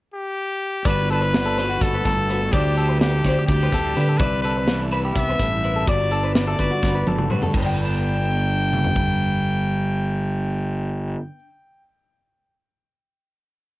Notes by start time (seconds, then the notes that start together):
0.14 G4
0.85 G1 G2 D3 B3 B4 D5, kick, closed hi-hat
0.89 D4 F#4
1.10 D4 A4 B4, closed hi-hat
1.21 B4
1.34 D3, snare, closed hi-hat
1.46 A4
1.58 F#4 B4, snare, closed hi-hat
1.69 F#4
1.81 G1 B3 A4, kick, closed hi-hat
1.95 B4
2.05 G1 D2 A4, kick, snare, closed hi-hat
2.30 F#4 B4, closed hi-hat
2.41 A4
2.53 D2 D3 G3 C4 G4 D5, kick, closed hi-hat
2.58 D4
2.77 C4 A4, closed hi-hat
2.89 B4
2.99 D3 G4, snare, closed hi-hat
3.14 A4
3.24 D2 D4 C5, kick, snare, closed hi-hat
3.39 G4
3.47 D2 G3 G4, kick, closed hi-hat
3.63 B4
3.72 D2 A2 A4, kick, snare, closed hi-hat
3.94 D3 D4 B4, snare, closed hi-hat
4.09 A4
4.18 C2 C3 E4 B4 D5, kick, closed hi-hat
4.42 D4 A4 B4, closed hi-hat
4.57 B4
4.68 E3, snare, closed hi-hat
4.81 A4
4.92 E4 B4, closed hi-hat
5.05 G4
5.15 C2 B3 E5, kick, closed hi-hat
5.29 B4
5.39 A1 G2 A4, kick, snare, closed hi-hat
5.64 E4 B4, closed hi-hat
5.76 A4
5.85 G1 G2 F#4 D5, kick, closed hi-hat
6.11 D4 A4, closed hi-hat
6.23 B4
6.35 D3 D5, snare, closed hi-hat
6.48 A4
6.59 G1 F#4 B4, kick, closed hi-hat
6.71 F#4
6.83 G1 B3, kick, snare
6.95 B4
7.07 G1 D2 A4, high tom
7.18 mid tom
7.30 G2 F#4 B4, mid tom
7.42 A4, floor tom
7.54 G1 G2 G5, kick, crash
7.59 B4 D5
7.64 D3 G5
7.74 B3
7.85 D4
8.73 mid tom
8.84 floor tom
8.96 kick